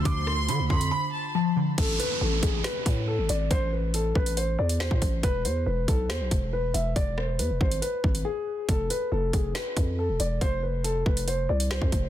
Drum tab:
CC |----------------|x---------------|----------------|----------------|
HH |x---x--x--------|x-x---x-x-x---x-|x---x--xx--x--x-|x-x---x-x-x---x-|
SD |--r-------------|--------o-------|------------o---|--------o-------|
BD |o-----o---------|o-----o---o-----|o-----o------oo-|o-----o---o-----|

CC |----------------|----------------|----------------|
HH |x---x--xx--x----|x-x---x-x-x---x-|x---x--xx--x--x-|
SD |--r-------------|--------o-------|------------o---|
BD |o-----o---o-----|o-----o---o-----|o-----o------oo-|